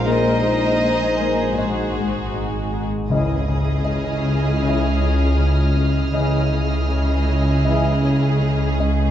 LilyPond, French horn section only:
\new Staff \with { instrumentName = "French horn section" } { \time 4/4 \key aes \mixolydian \tempo 4 = 79 r1 | \key cis \minor <e dis''>8 r4. <e dis''>8 r4. | <e dis''>8 r4. <e dis''>8 r4. | }